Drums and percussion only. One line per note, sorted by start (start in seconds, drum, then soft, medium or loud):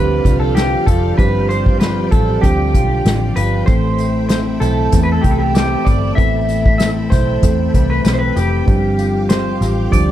0.25 kick medium
0.25 closed hi-hat medium
0.57 snare loud
0.57 closed hi-hat medium
0.87 kick medium
0.87 closed hi-hat medium
1.19 kick loud
1.19 closed hi-hat medium
1.50 closed hi-hat medium
1.66 kick medium
1.80 snare loud
1.80 closed hi-hat medium
2.12 kick loud
2.12 closed hi-hat medium
2.43 kick medium
2.43 closed hi-hat loud
2.74 kick medium
2.74 closed hi-hat medium
3.06 snare loud
3.06 closed hi-hat medium
3.36 closed hi-hat medium
3.67 kick loud
3.67 closed hi-hat medium
3.67 tambourine soft
3.98 closed hi-hat medium
3.98 tambourine soft
4.29 snare loud
4.29 closed hi-hat medium
4.29 tambourine medium
4.62 closed hi-hat medium
4.62 tambourine medium
4.92 kick medium
4.92 closed hi-hat loud
4.92 tambourine soft
5.24 kick medium
5.24 closed hi-hat medium
5.55 snare loud
5.55 closed hi-hat medium
5.55 tambourine medium
5.87 kick medium
5.87 closed hi-hat medium
5.87 tambourine soft
6.18 kick loud
6.18 closed hi-hat medium
6.49 closed hi-hat medium
6.49 tambourine medium
6.66 kick loud
6.79 snare loud
6.79 closed hi-hat medium
6.79 tambourine medium
7.12 kick loud
7.12 snare soft
7.12 closed hi-hat medium
7.12 tambourine medium
7.43 kick medium
7.43 closed hi-hat loud
7.43 tambourine soft
7.74 kick medium
7.74 closed hi-hat medium
8.05 snare loud
8.05 closed hi-hat medium
8.05 tambourine medium
8.37 closed hi-hat medium
8.37 tambourine soft
8.68 kick loud
8.68 closed hi-hat medium
8.99 closed hi-hat medium
8.99 tambourine soft
9.30 snare loud
9.30 closed hi-hat medium
9.30 tambourine medium
9.62 snare soft
9.62 closed hi-hat medium
9.62 tambourine medium
9.93 kick medium
9.93 closed hi-hat loud
9.93 tambourine soft